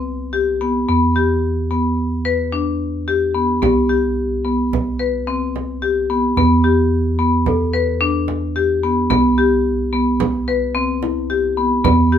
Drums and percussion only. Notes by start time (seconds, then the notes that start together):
3.63 frame drum
4.73 frame drum
5.56 frame drum
6.37 frame drum
7.46 frame drum
8.28 frame drum
9.10 frame drum
10.20 frame drum
11.03 frame drum
11.85 frame drum